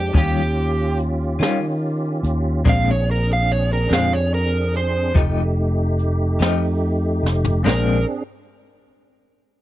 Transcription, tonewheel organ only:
0.00 0.12 G#3 medium
0.00 0.12 C4 medium
0.00 0.12 D4 medium
0.15 2.63 C#4 medium
0.15 2.63 F4 medium
0.15 2.63 G4 medium
2.65 5.12 C4 medium
2.65 5.13 D4 medium
2.65 5.13 G#4 medium
5.15 7.62 A3 medium
5.15 7.62 D#4 medium
5.15 7.62 G4 medium
7.66 8.23 C4 medium
7.66 8.23 D4 medium
7.66 8.24 G#4 medium

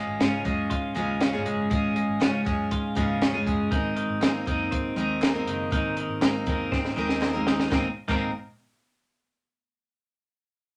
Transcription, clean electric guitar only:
0.00 0.45 G#3 medium
0.00 0.70 G#4 medium
0.20 1.19 C#4 medium
0.45 0.95 G#3 medium
0.70 2.70 F4 medium
0.96 1.45 G#3 medium
1.20 2.20 C#4 medium
1.46 1.70 G#3 medium
1.71 1.96 G#3 medium
1.96 2.46 G#3 medium
2.21 3.21 C#4 medium
2.46 2.96 G#3 medium
2.72 3.77 F4 medium
2.97 3.46 G#3 medium
3.22 3.77 C#4 medium
3.47 4.21 G#3 medium
3.71 3.96 D#3 medium
3.96 4.46 D#3 medium
4.21 5.22 A#3 medium
4.47 4.97 D#3 medium
4.71 6.71 C4 medium
4.97 5.47 D#3 medium
5.22 6.22 A#3 medium
5.47 5.72 D#3 medium
5.72 5.97 D#3 medium
5.97 6.47 D#3 medium
6.22 7.21 A#3 medium
6.47 6.96 D#3 medium
6.72 7.73 C4 medium
6.97 7.46 D#3 medium
7.22 7.72 A#3 medium
7.47 7.70 D#3 medium
7.70 7.86 D#3 medium
7.70 7.87 A#3 medium
7.70 7.88 C4 medium
8.08 8.29 D#3 medium
8.08 8.30 A#3 medium
8.08 8.30 C4 medium

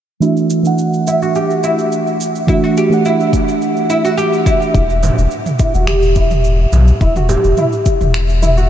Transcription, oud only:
0.22 0.36 E4 medium
1.08 1.22 E4 medium
1.22 1.35 F#4 medium
1.36 1.50 G4 medium
1.64 1.78 E4 medium
2.49 2.63 E4 medium
2.64 2.76 F#4 medium
2.77 2.91 G4 medium
3.06 3.20 E4 medium
3.90 4.04 E4 medium
4.05 4.17 F#4 medium
4.17 4.32 G4 medium
4.46 4.61 E4 medium
4.74 4.89 E4 medium
5.60 5.74 E4 medium
5.75 5.87 F#4 medium
5.88 6.02 G4 medium
6.17 6.31 E4 medium
7.01 7.16 E4 medium
7.17 7.29 F#4 medium
7.29 7.44 G4 medium
7.58 7.72 E4 medium
8.42 8.57 E4 medium
8.57 8.69 F#4 medium

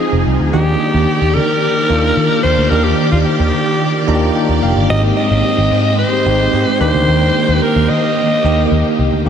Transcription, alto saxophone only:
0.00 0.23 G#4 medium
0.53 1.36 G4 loud
1.34 2.42 A#4 loud
2.43 2.71 C5 loud
2.69 2.85 A#4 loud
2.84 3.11 G4 medium
3.12 3.18 F4 medium
3.25 4.31 G4 loud
4.90 5.02 D#5 loud
5.17 5.95 D#5 loud
5.99 6.76 C5 loud
6.81 7.64 C5 loud
7.62 7.91 A#4 medium
7.90 8.99 D#5 loud

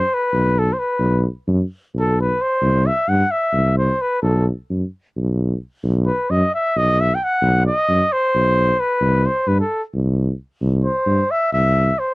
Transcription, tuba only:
0.33 0.70 B1 medium
0.99 1.26 B1 medium
1.47 1.61 F#2 medium
1.94 2.31 B1 medium
2.61 2.87 C2 medium
3.08 3.22 G2 medium
3.53 3.91 C2 medium
4.23 4.48 B1 loud
4.70 4.83 F#2 medium
5.17 5.53 B1 medium
5.83 6.09 B1 medium
6.30 6.44 F#2 medium
6.76 7.13 B1 medium
7.42 7.68 B1 loud
7.88 8.02 F#2 medium
8.34 8.71 B1 medium
9.01 9.27 C2 medium
9.47 9.61 G2 medium
9.94 10.31 C2 medium
10.61 10.87 C2 medium
11.06 11.20 G2 medium
11.53 11.90 C2 medium

